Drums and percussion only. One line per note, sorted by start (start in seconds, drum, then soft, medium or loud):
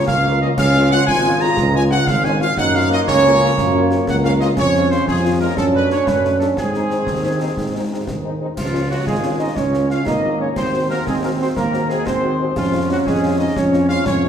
0.08 concert bass drum medium
0.08 snare medium
0.58 concert bass drum medium
0.58 snare medium
0.58 crash medium
0.74 snare medium
0.91 snare medium
1.08 concert bass drum medium
1.08 snare medium
1.57 concert bass drum medium
1.57 snare medium
1.91 snare medium
2.07 concert bass drum medium
2.07 snare medium
2.25 snare medium
2.41 snare medium
2.57 concert bass drum medium
2.57 snare medium
2.74 snare medium
2.92 snare medium
3.08 concert bass drum medium
3.08 snare medium
3.58 concert bass drum medium
3.58 snare medium
3.91 snare medium
4.07 concert bass drum medium
4.07 snare medium
4.24 snare medium
4.41 snare medium
4.57 concert bass drum medium
4.57 snare medium
4.57 crash soft
4.74 snare medium
4.91 snare medium
5.08 concert bass drum medium
5.08 snare medium
5.57 concert bass drum medium
5.57 snare medium
5.90 snare medium
6.07 concert bass drum medium
6.07 snare medium
6.25 snare medium
6.41 snare medium
6.57 concert bass drum medium
6.57 snare medium
6.74 snare medium
6.90 snare medium
7.07 concert bass drum medium
7.07 snare medium
7.57 concert bass drum medium
7.57 snare medium
8.07 concert bass drum medium
8.07 snare medium
8.57 concert bass drum medium
8.57 snare medium
8.57 crash medium
9.07 concert bass drum medium
9.07 snare medium
9.56 concert bass drum medium
9.56 snare medium
9.74 snare medium
9.90 snare medium
10.07 concert bass drum medium
10.07 snare medium
10.56 concert bass drum medium
10.56 snare medium
10.56 crash soft
11.07 concert bass drum medium
11.07 snare medium
11.57 concert bass drum medium
11.57 snare medium
11.73 snare medium
11.90 snare medium
12.07 concert bass drum medium
12.07 snare medium
12.56 concert bass drum medium
12.56 snare medium
12.56 crash soft
13.07 concert bass drum medium
13.07 snare medium
13.56 concert bass drum medium
13.56 snare medium
13.73 snare medium
13.89 snare medium
14.06 concert bass drum medium
14.06 snare medium